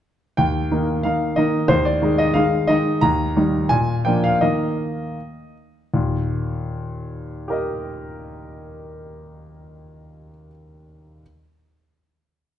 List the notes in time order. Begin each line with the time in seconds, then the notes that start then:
0.37 D#2 G5
0.71 D#3 A#3 D#4
1.03 D#3 A#3 D#4 F5
1.36 D#3 A#3 D#4 D#5
1.68 D#2 C5
1.85 D5
2.02 D#3 G#3 D#4
2.18 D#5
2.34 D#3 G#3 D#4 F5
2.67 D#3 G#3 D#4 D#5
3.01 D#2 A#5
3.36 D#3 G3 D#4
3.69 A#2 G#5
4.05 F3 A#3 D4 G5
4.24 F5
4.41 D#3 A#3 D#4 D#5
5.94 D#2 A#2
7.48 G4 A#4
7.52 D#5